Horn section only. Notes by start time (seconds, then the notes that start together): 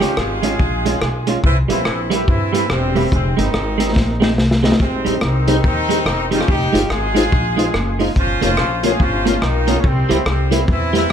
Already playing: G3 C#4 G4
0.19 G#3 F4 G#4
1.46 E3 C4 E4
1.71 E3 C4 E4
2.12 G3 E4 G4
2.29 E3 C4 E4
2.54 E3 C4 E4
2.71 C3 G3 C4
3.13 G#3 C4
3.38 D#3 C4 D#4
4.81 C3 G#3 C4
5.24 D#3 C4 D#4
5.66 D#3 C4 D#4
6.34 F3 C#4 F4
6.50 G3 D#4 G4
6.91 G#3 F4 G#4
8.17 F3 C#4 F4
8.43 F3 C#4 F4
8.85 G#3 F4 G#4
9.01 F3 C#4 F4
9.28 F3 C#4 F4
9.43 D#3 A#3 D#4
9.79 C#3 A#3 C#4
9.86 G3 C4
10.29 C3 G3 C4
10.71 E3 C4 E4
10.96 E3 C4 E4